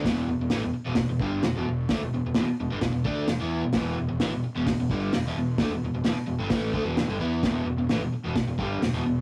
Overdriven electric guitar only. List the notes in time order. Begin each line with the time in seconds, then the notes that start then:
0.05 E2 B2 E3
0.29 E2 B2
0.41 E2 B2
0.52 A2 E3
0.64 E2 B2
0.74 muted overdriven electric guitar stroke
0.85 E2 B2
0.97 E2 B2
1.09 E2 B2
1.21 G2 D3 G3
1.45 E2 B2
1.56 E2 B2
1.69 E2 B2
1.91 D3 A3
2.03 E2 B2
2.14 E2 B2
2.26 E2 B2
2.36 E2 B2
2.49 muted overdriven electric guitar stroke
2.60 E2 B2
2.71 G2 D3
2.81 E2 B2
2.92 E2 B2
3.05 D3 A3 D4
3.28 E2 B2
3.40 E3 B3 E4
3.62 E2 B2
3.75 E2 B2 E3
3.98 E2 B2
4.09 E2 B2
4.21 A2 E3
4.33 E2 B2
4.44 muted overdriven electric guitar stroke
4.56 E2 B2
4.68 E2 B2
4.80 E2 B2
4.91 G2 D3 G3
5.15 E2 B2
5.27 E2 B2
5.38 E2 B2
5.61 D3 A3
5.73 E2 B2
5.84 E2 B2
5.95 E2 B2
6.04 E2 B2
6.16 muted overdriven electric guitar stroke
6.27 E2 B2
6.39 G2 D3
6.51 A2 E3 A3
6.74 D3 A3
6.84 E2 B2 E3
7.09 G2 D3
7.20 E3 B3 E4
7.44 E2 B2 E3
7.66 E2 B2
7.79 E2 B2
7.91 A2 E3
8.03 E2 B2
8.14 muted overdriven electric guitar stroke
8.24 E2 B2
8.36 E2 B2
8.48 E2 B2
8.58 G2 D3 G3
8.81 E2 B2
8.93 E2 B2
9.05 E2 B2